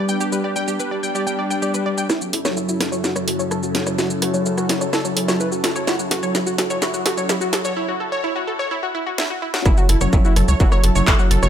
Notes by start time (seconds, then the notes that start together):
Already playing: G3 B3 D4 G4
0.09 G3 G5, shaker
0.20 G4, shaker
0.32 G3 B4, shaker
0.44 G4 D5
0.56 G3 G5, shaker
0.68 G3 G4, shaker
0.80 B4, shaker
0.91 G3 D5
1.03 G3 G5, shaker
1.15 G4 D5, shaker
1.27 G3 G5, shaker
1.39 G3 D5
1.50 G3 G5, shaker
1.62 G4 D5, shaker
1.74 G3 B4, shaker
1.86 G3 D5
1.98 G3 G5, shaker
2.10 F#1 F#2 C#3 F#3 C#4 E4 A4, cross-stick, snare, shaker
2.21 F#3 F#4, shaker
2.33 F#1 E4 A4, open hi-hat
2.45 F#1 F#3 C#4 F#4 C#5, cross-stick, snare, shaker
2.57 F#1 F#3 E4, shaker
2.68 E4 F#4, shaker
2.80 F#1 F#3 A4, cross-stick, snare, open hi-hat
2.92 C#2 F#3 C#5, shaker
3.04 F#1 E4 F#4, snare, shaker
3.16 F#3 C#5, cross-stick, shaker
3.27 F#1 F#3 A4, open hi-hat
3.39 F#1 F#3 C#5, shaker
3.51 F#1 E4 A4, cross-stick, shaker
3.63 F#3 F#4, shaker
3.75 F#1 F#3 A4, snare, open hi-hat
3.86 F#1 F#3 C#5, cross-stick, shaker
3.98 F#1 E4 F#4, snare, shaker
4.10 F#3 F#4, shaker
4.22 F#1 F#4 A4, cross-stick, open hi-hat
4.34 F#1 F#3 C#4 F#4 C#5, shaker
4.46 F#1 F#3 E4, shaker
4.57 F#4, cross-stick, shaker
4.69 F#1 F#3 A4, snare, open hi-hat
4.81 C#2 F#3 C#5, shaker
4.93 F#1 E4 A4, cross-stick, snare, shaker
5.05 F#3 C#5, shaker
5.16 F#1 F#3 A4, open hi-hat
5.28 F#3 C#5, cross-stick, snare, shaker
5.40 F#1 E4 B4, shaker
5.52 F#3 F#4, shaker
5.64 F#1 F#3 A4, cross-stick, snare, open hi-hat
5.76 F#1 F#3 C#5, shaker
5.87 F#1 E4 F#4, snare, shaker
5.99 F#3 F#4, shaker
6.11 F#1 F#4 A4, snare, open hi-hat
6.23 F#1 F#3 C#4 F#4 C#5, shaker
6.34 F#3 E4, snare, shaker
6.46 F#4, shaker
6.58 F#1 F#3 A4, snare, open hi-hat
6.70 C#2 F#3 C#5, shaker
6.82 F#1 E4 F#4, snare, shaker
6.94 F#3 F#4, shaker
7.05 F#1 F#4 A4, snare, open hi-hat
7.17 F#1 F#3 C#4 F#4 C#5, shaker
7.29 F#3 E4, snare, shaker
7.41 F#4, shaker
7.53 F#1 F#3 A4, snare, open hi-hat
7.64 F#1 F#3 C#5, shaker
7.76 E4
7.88 F#4
8.00 A4
8.12 C#5
8.24 E4
8.36 F#4
8.47 A4
8.59 C#5
8.71 E4
8.83 F#4
8.95 E4
9.07 F#4
9.18 E4, snare
9.30 F#4
9.42 E4
9.54 F#4, snare
9.66 F#1 F#3 C#4 E4 A4 E5, kick, cross-stick, shaker
9.77 F#3 F#4 F#5, shaker
9.89 F#1 E4 A4 A5, open hi-hat
10.01 F#1 F#3 C#4 F#4 C#5 C#6, cross-stick, shaker
10.13 F#1 F#3 E4 E5, kick, shaker
10.25 E4 F#4 F#5, shaker
10.36 F#1 F#3 A4 A5, cross-stick, open hi-hat
10.48 C#2 F#3 C#5 C#6, shaker
10.60 F#1 E4 F#4 E5, kick, shaker
10.72 F#3 C#5 C#6, cross-stick, shaker
10.84 F#1 F#3 A4 A5, open hi-hat
10.95 F#1 F#3 C#5 C#6, shaker
11.07 F#1 E4 A4 E5, kick, cross-stick, clap, shaker
11.19 F#3 F#4 F#5, shaker
11.31 F#1 F#3 A4 A5, open hi-hat
11.43 F#1 F#3 C#5 C#6, cross-stick, shaker